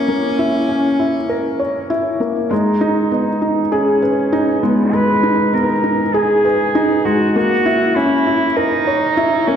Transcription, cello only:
0.00 1.91 C#4 medium
2.51 3.08 D#4 medium
3.12 3.74 D#4 medium
3.72 4.62 C#4 medium
4.63 4.94 B3 medium
4.93 5.55 B4 loud
5.54 6.08 A#4 medium
6.08 6.16 A#4 medium
6.14 7.06 G#4 loud
7.05 7.35 F#4 medium
7.35 7.97 F#4 loud
7.96 8.58 E4 medium
8.56 9.48 D#4 loud
9.47 9.56 C#4 medium

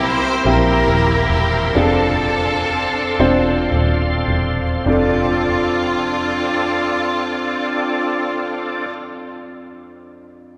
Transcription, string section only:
0.00 0.41 E4 medium
0.00 0.41 G4 medium
0.04 0.45 C5 medium
0.47 1.72 E4 medium
0.47 1.72 G4 medium
0.47 1.28 A#4 medium
1.31 1.72 A#4 medium
1.75 3.69 C4 medium
1.75 3.69 D4 medium
1.75 3.73 A4 medium
4.90 8.88 F4 medium

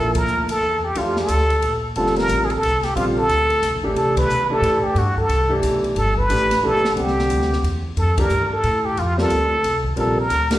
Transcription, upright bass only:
0.00 0.27 A#1 medium
0.28 0.61 D2 medium
0.62 0.94 E2 medium
0.95 1.28 F2 medium
1.29 1.61 D2 medium
1.63 1.95 A#1 medium
1.96 2.28 F1 medium
2.29 2.61 A1 medium
2.62 2.95 C2 medium
2.96 3.28 A#1 medium
3.29 3.62 D2 medium
3.62 3.73 C2 medium
3.73 3.84 A#1 soft
3.84 3.94 A1 medium
3.95 4.28 C3 medium
4.28 4.61 B2 medium
4.62 4.81 A2 medium
4.82 muted upright bass stroke soft
4.95 5.28 G2 medium
5.28 5.61 C2 medium
5.62 5.95 B1 medium
5.96 6.28 G1 medium
6.29 6.62 A1 medium
6.63 6.95 B1 medium
6.96 7.29 C2 medium
7.30 7.62 D2 medium
7.63 7.95 E2 medium
7.97 8.29 F2 medium
8.30 8.62 G2 medium
8.64 8.96 A2 medium
8.97 9.29 F2 medium
9.30 9.63 D2 medium
9.63 9.96 C2 medium
9.97 10.29 A#1 medium
10.30 10.59 D2 medium

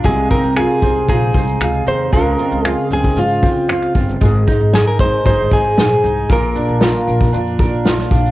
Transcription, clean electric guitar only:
0.05 0.31 G#4 medium
0.31 0.56 A#4 medium
0.57 1.08 G#4 medium
1.09 1.88 G#4 medium
1.88 2.13 C5 loud
2.13 2.67 A#4 loud
2.67 2.87 G#4 loud
2.93 3.19 G#4 medium
3.19 3.92 F4 medium
4.75 4.87 G#4 medium
4.87 5.00 A#4 medium
5.00 5.25 C5 loud
5.26 5.52 C5 loud
5.53 6.32 G#4 medium
6.33 7.31 A#4 medium

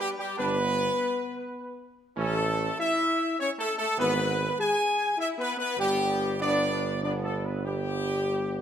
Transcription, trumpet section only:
0.00 0.09 G4 loud
0.18 0.38 G4 loud
0.38 1.83 B4 loud
2.19 2.76 A4 loud
2.80 3.35 E5 loud
3.40 3.49 C#5 loud
3.59 3.76 A4 loud
3.78 3.96 A4 loud
3.99 4.56 B4 loud
4.60 5.15 G#5 loud
5.20 5.28 E5 loud
5.40 5.58 B4 loud
5.59 5.77 B4 loud
5.79 6.37 G4 loud
6.41 6.99 D5 loud
7.03 7.12 D5 loud
7.24 7.43 A4 loud
7.45 7.66 B4 medium
7.65 8.62 G4 loud

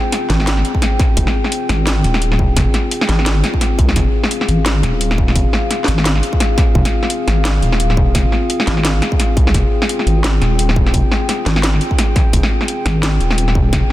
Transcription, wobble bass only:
0.30 0.64 G#1 loud
1.17 1.26 F1 loud
1.70 2.03 G#1 loud
2.04 2.56 D#1 loud
2.56 2.66 F1 loud
3.09 3.43 G#1 loud
3.79 3.95 C2 loud
3.96 4.05 F1 loud
4.48 4.82 G#1 loud
4.83 5.35 D#1 loud
5.36 5.45 F1 loud
5.88 6.22 G#1 medium
6.75 6.84 F1 loud
7.27 7.61 G#1 medium
7.62 8.14 D#1 loud
8.15 8.24 F1 loud
8.67 9.01 G#1 loud
9.37 9.53 C2 loud
9.54 9.63 F1 loud
10.06 10.40 G#1 medium
10.41 10.93 D#1 loud
10.94 11.03 F1 loud
11.46 11.80 G#1 loud
12.33 12.42 F1 loud
12.86 13.19 G#1 loud
13.21 13.72 D#1 loud
13.73 13.82 F1 loud

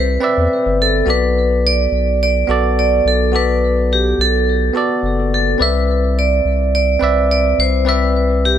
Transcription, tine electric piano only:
0.00 0.19 C4 medium
0.00 0.19 B4 medium
0.00 0.20 D5 medium
0.00 0.21 E5 medium
0.21 1.04 C4 medium
0.21 1.04 B4 medium
0.21 1.05 D5 medium
0.21 1.05 E5 medium
1.06 2.45 B3 medium
1.06 2.46 F#4 medium
1.06 2.46 A4 medium
1.06 2.47 D5 medium
2.47 3.30 B3 medium
2.47 3.31 F#4 medium
2.47 3.31 A4 medium
2.47 3.32 D5 loud
3.32 4.72 B3 medium
3.32 4.72 F#4 medium
3.32 4.73 A4 medium
3.32 4.73 D5 medium
4.73 5.56 B3 medium
4.73 5.57 F#4 medium
4.73 5.58 A4 medium
4.73 5.58 D5 medium
5.58 6.98 C4 medium
5.58 6.98 B4 medium
5.58 6.99 D5 medium
5.58 7.00 E5 medium
7.00 7.83 C4 medium
7.00 7.83 B4 medium
7.00 7.84 D5 medium
7.00 7.85 E5 medium
7.85 8.58 C4 medium
7.85 8.58 B4 medium
7.85 8.58 D5 medium
7.85 8.58 E5 medium

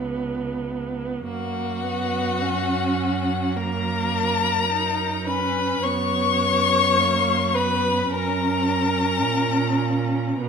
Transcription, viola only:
0.00 1.24 B3 medium
1.26 1.85 A#3 medium
1.84 2.43 B3 medium
2.41 3.58 C#4 soft
3.56 4.69 A#3 medium
4.70 5.28 D#4 medium
5.26 5.86 C#4 medium
5.84 6.98 B3 medium
6.97 7.55 A#3 medium
7.54 8.10 B3 medium
8.10 10.37 C#4 medium
10.41 10.49 B3 medium

